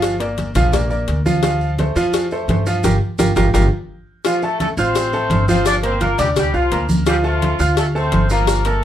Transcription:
Already playing: upright bass G1, upright piano F3 F4 F5
0.02 cowbell, maracas
0.20 upright piano A#3 A#4 D5, cowbell, high conga, maracas
0.38 cowbell, high conga, maracas
0.55 upright bass A#1, upright piano F3 F4 F5, cowbell, low conga, maracas
0.72 upright piano A#3 A#4 D5, cowbell, high conga, low conga, maracas
0.90 upright piano A#3 A#4 D5, high conga, maracas
1.08 upright bass D2, cowbell, high conga, maracas
1.26 upright piano F3 F4 F5, high conga, maracas
1.43 upright piano F3 F4 F5, cowbell, high conga, maracas
1.61 maracas
1.78 upright piano A3 A4 C5, cowbell, high conga, maracas
1.96 upright bass F2, upright piano F3 F4 F5, high conga, maracas
2.13 cowbell, high conga, maracas
2.31 upright piano A3 A4 C5, high conga, maracas
2.48 upright bass G2, upright piano A3 A4 C5, cowbell, high conga, maracas
2.66 upright piano F3 F4 F5, maracas
2.84 upright bass G1, upright piano F4 G4 A#4, cowbell, high conga, maracas
3.19 upright bass G1, upright piano F4 G4 A#4, cowbell, high conga, maracas
3.36 upright bass G1, upright piano F4 G4 A#4, cowbell, high conga, maracas
3.54 upright bass G1, upright piano F4 G4 A#4, cowbell, high conga, maracas
4.25 upright piano F3 F4 F5, horn section F3 F4, cowbell, high conga, maracas
4.42 upright piano A3 A4 A5, horn section A3 A4, high conga, maracas
4.59 horn section A3 A4, cowbell, high conga, maracas
4.77 upright bass A1, horn section C4 C5, upright piano F4 F5 F6, high conga, maracas
4.95 cowbell, high conga, maracas
5.13 upright piano A3 A4 A5, high conga, maracas
5.30 upright bass G1, cowbell, high conga, maracas
5.47 upright piano F3 F4 F5, horn section C4 C5, high conga, maracas
5.66 horn section D4 D5, cowbell, high conga, maracas
5.83 upright piano A#3 A#4 A#5, horn section C4 C5, cowbell, high conga, maracas
6.00 horn section A#3 A#4, upright piano F4 F5 F6, cowbell, high conga, maracas
6.18 upright bass D2, horn section G3 G4, upright piano D4 D5 D6, cowbell, low conga, maracas
6.36 horn section G3 G4, cowbell, high conga, low conga, maracas
6.54 upright bass C2, horn section F3 F4, upright piano F4 F5 F6, high conga, maracas
6.72 upright bass D2, upright piano A#3 A#4 A#5, cowbell, high conga, maracas
6.89 high conga, maracas
7.06 upright piano F3 F4 F5, horn section G3 G4, cowbell, high conga, maracas
7.24 horn section F3 F4, upright piano A3 A4 A5, high conga, maracas
7.42 cowbell, high conga, maracas
7.59 upright bass D2, upright piano F4 F5 F6, maracas
7.77 horn section A3 A4, cowbell, high conga, maracas
7.95 upright piano A3 A4 A5, horn section C4 C5, high conga, maracas
8.12 upright bass G1, cowbell, high conga, maracas
8.30 upright piano F3 F4 F5, horn section A#3 A#4, maracas
8.47 cowbell, high conga, maracas
8.65 horn section A3 A4, upright piano A#3 A#4 A#5, cowbell, high conga, maracas

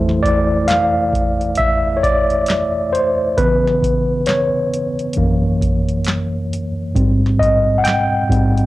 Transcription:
Already playing: tine electric piano F2 E3 A3 E4 C5
0.09 snare
0.23 tine electric piano D5, kick, closed hi-hat
0.68 tine electric piano F5, snare, clap, closed hi-hat
1.13 kick, closed hi-hat
1.41 closed hi-hat
1.55 tine electric piano E5, kick, closed hi-hat
1.97 tine electric piano C#5
2.03 tine electric piano D5, kick, closed hi-hat
2.30 closed hi-hat
2.46 snare, clap, closed hi-hat
2.93 tine electric piano C5, closed hi-hat
3.37 tine electric piano C#3 E3 B3 B4, kick, closed hi-hat
3.67 snare
3.82 kick, closed hi-hat
4.26 tine electric piano C#5, snare, clap, closed hi-hat
4.74 closed hi-hat
4.99 closed hi-hat
5.13 tine electric piano F#2 E3, closed hi-hat
5.17 tine electric piano A#3, kick
5.62 kick, closed hi-hat
5.89 closed hi-hat
6.05 snare, clap, closed hi-hat
6.53 closed hi-hat
6.95 tine electric piano G#2 G3 C4, kick, closed hi-hat
7.26 snare
7.39 tine electric piano D#5, kick, closed hi-hat
7.78 tine electric piano F#5
7.84 tine electric piano G5, snare, clap, closed hi-hat
8.29 tine electric piano G#2 G3 C4, kick, closed hi-hat
8.57 closed hi-hat

